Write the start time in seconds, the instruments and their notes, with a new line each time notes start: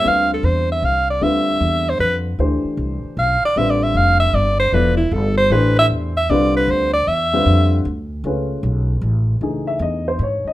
0.04 upright bass D2, upright piano D3 G3 C4 F4 B4, alto saxophone F5
0.34 alto saxophone A4
0.43 upright bass E2, alto saxophone C5
0.72 alto saxophone E5
0.82 upright bass C2, alto saxophone F5
1.10 alto saxophone D5
1.21 upright bass D2, upright piano D3 G3 C4 F4 B4, alto saxophone E5
1.60 upright bass E2
1.89 alto saxophone C5
1.99 upright bass F2, alto saxophone B4
2.38 upright bass D2, upright piano E3 A3 D4 G4 C5
2.64 muted upright bass stroke
2.77 upright bass C2
3.04 muted upright bass stroke
3.17 upright bass B1, alto saxophone F5
3.43 alto saxophone D5, muted upright bass stroke
3.56 upright bass A1, upright piano D3 G3 C4 F4 B4, alto saxophone E5
3.70 alto saxophone D5
3.83 alto saxophone E5
3.94 upright bass F1, alto saxophone F5
4.20 alto saxophone E5
4.33 upright bass G1, alto saxophone D5
4.59 alto saxophone C5
4.72 upright bass E1, upright piano F3 B3 E4 A4 D5, alto saxophone B4
4.97 alto saxophone E4
5.11 upright bass G1, alto saxophone A4
5.37 alto saxophone C5
5.50 upright bass A1, upright piano E3 A3 D4 G4 C5, alto saxophone B4
5.79 alto saxophone E5
5.90 upright bass E2
6.17 alto saxophone E5
6.29 upright bass C2, upright piano D3 G3 C4 F4 B4, alto saxophone D5
6.56 alto saxophone B4
6.68 upright bass D2, alto saxophone C5
6.94 alto saxophone D5
7.07 upright bass E2, alto saxophone E5
7.33 upright piano D3 G3 C4 F4 B4
7.46 upright bass F2
7.85 upright bass D2
8.24 upright bass C#2, upright piano A3 C#4 F4 G#4 B4
8.63 upright bass B1
9.01 upright bass A1
9.41 upright bass C#2, upright piano E3 A3 D#4 G#4
9.67 upright piano E5
9.79 upright bass E2, upright piano D#5
10.08 upright piano C5
10.19 upright bass G#2
10.23 upright piano C#5
10.45 upright piano D#5, muted upright bass stroke